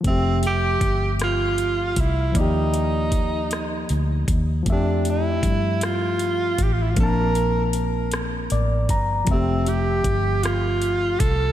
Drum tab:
HH |xxxxxx|xxxxxx|xxxxxx|xxxxxx|
SD |---r--|---r--|---r--|---r--|
BD |o-o--o|o-o--o|o-o--o|o----o|

HH |xxxxxx|
SD |---r--|
BD |o-o--o|